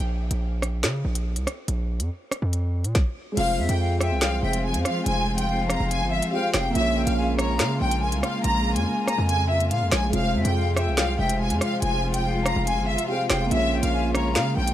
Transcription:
0.00 A#1
0.31 A#1, closed hi-hat
0.62 cross-stick, closed hi-hat
0.83 C#3, finger snap, snare, closed hi-hat
1.05 A#1
1.15 closed hi-hat
1.36 C2, closed hi-hat
1.47 cross-stick, closed hi-hat
1.68 A#1, closed hi-hat
2.00 F2, closed hi-hat
2.31 cross-stick, closed hi-hat
2.42 F2
2.53 closed hi-hat
2.84 A#2, closed hi-hat
2.95 kick, snare, closed hi-hat
3.32 G#3 C4
3.37 F1 F3 G#3 C4 F4 G#4 F5, closed hi-hat, crash
3.42 C5
3.58 F2 E5
3.69 F2 G5, closed hi-hat
3.80 F5
4.00 E5 G5, cross-stick, closed hi-hat
4.11 C2
4.21 F5, finger snap, snare, closed hi-hat
4.43 F1 E5 G5
4.53 closed hi-hat
4.65 G#5
4.74 F2, closed hi-hat
4.85 F5, cross-stick, closed hi-hat
5.06 F1 G#5, closed hi-hat
5.38 G5, closed hi-hat
5.48 F5
5.69 A#5, cross-stick, closed hi-hat
5.80 F1
5.91 G#5, closed hi-hat
6.01 G1
6.11 E5
6.22 closed hi-hat
6.31 C4 F4 G4 G#4 F5 G5
6.36 C5
6.54 F1 F5 G5, finger snap, cross-stick, snare, closed hi-hat
6.71 A#3 C#4
6.75 A#1 C#3 G#3 A#3 F4 G#4 E5, closed hi-hat
6.81 C#5
6.96 G5
7.07 A#1 F5, closed hi-hat
7.18 G#5
7.38 C#5 A#5, cross-stick, closed hi-hat
7.59 C#3 F5, finger snap, snare, closed hi-hat
7.81 A#1 G5
7.91 closed hi-hat
8.02 G#5
8.12 C2, closed hi-hat
8.23 F5, cross-stick, closed hi-hat
8.44 A#1 A#5, closed hi-hat
8.76 F2 G#5, closed hi-hat
8.86 G#5
9.07 A#5, cross-stick, closed hi-hat
9.18 F2
9.29 G#5, closed hi-hat
9.50 E5
9.60 closed hi-hat
9.71 A#2 F5, closed hi-hat
9.82 F2
9.92 A#1 G#5, finger snap, cross-stick, snare, closed hi-hat
10.08 G#3 C4
10.13 F1 C3 F3 F4 G#4 F5, closed hi-hat
10.18 C5
10.34 F2 E5
10.45 F2 G5, closed hi-hat
10.56 F5
10.77 E5 G5, cross-stick, closed hi-hat
10.87 C2
10.97 F5, finger snap, snare, closed hi-hat
11.19 F1 E5 G5
11.29 closed hi-hat
11.41 G#5
11.50 F2, closed hi-hat
11.61 F5, cross-stick, closed hi-hat
11.82 F1 G#5, closed hi-hat
12.14 G5, closed hi-hat
12.24 F5
12.45 A#5, cross-stick, closed hi-hat
12.56 F1
12.67 G#5, closed hi-hat
12.77 G1
12.87 E5
12.98 closed hi-hat
13.07 C4 F4 G4 G#4 F5 G5
13.12 C5
13.30 F1 F5 G5, finger snap, cross-stick, snare, closed hi-hat
13.46 A#3 C#4
13.51 A#1 C#3 A#3 F4 G#4 E5, closed hi-hat
13.57 C#5
13.72 G5
13.83 A#1 F5, closed hi-hat
13.94 G#5
14.14 C#5 A#5, cross-stick, closed hi-hat
14.35 C#3 F5, finger snap, snare, closed hi-hat
14.57 A#1 G5
14.67 closed hi-hat

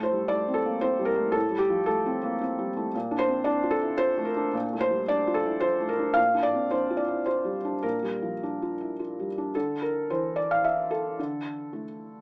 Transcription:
Already playing: A2 A3 A4
0.03 C5
0.12 G3
0.28 A3 D5
0.48 C4
0.54 A4
0.66 A#3
0.81 C4 C5
0.99 G3
1.05 A#4
1.16 A3
1.32 A2 A4
1.51 G3
1.58 G4
1.69 F3
1.86 A3 A4
2.06 C4
2.23 A#3
2.41 C4
2.59 G3
2.77 A3
2.95 A#2
3.11 D4
3.19 C5
3.28 C4
3.44 D4 D5
3.63 F4
3.71 A4
3.81 E4
3.98 F4 C5
4.18 A3
4.25 A#4
4.36 D4
4.53 A#2
4.73 A3
4.81 C5
4.91 G3
5.08 D4 D5
5.27 F4
5.34 A4
5.46 E4
5.60 F4 C5
5.80 A3
5.89 A#4
5.99 D4
6.14 A#2 F5
6.34 D4
6.43 D5
6.54 C4
6.71 D4 C5
6.90 F4
6.97 D5
7.08 E4
7.26 F4 C5
7.45 G3
7.65 D4
7.83 A#2 A#4
8.03 G3
8.22 F3
8.43 D4
8.62 F4
8.81 E4
8.99 F4
9.19 G3
9.38 D4
9.55 D3 A4
9.82 A#4
10.10 E3 C5
10.36 D5
10.51 F5
10.64 E5
10.91 A4
11.19 D3
11.73 A3

